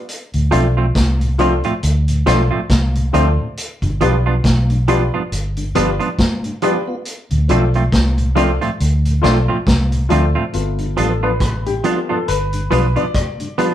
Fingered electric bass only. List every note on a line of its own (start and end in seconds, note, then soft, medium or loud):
0.34 0.51 D2 medium
0.53 0.92 B1 loud
0.96 1.60 C2 medium
1.83 2.23 D2 loud
2.27 2.49 B1 loud
2.70 3.10 C2 medium
3.14 3.37 D2 loud
3.83 3.99 G1 medium
4.01 4.41 B1 medium
4.45 5.09 B1 loud
5.32 5.71 G1 medium
5.76 5.98 G1 medium
7.31 7.48 D2 medium
7.50 7.90 B1 medium
7.93 8.57 C2 medium
8.81 9.20 D2 loud
9.24 9.46 B1 loud
9.67 10.07 C2 medium
10.11 10.33 D2 medium
10.54 10.94 G1 medium
10.98 11.81 A1 loud
12.29 12.68 G1 medium
12.72 12.95 B1 loud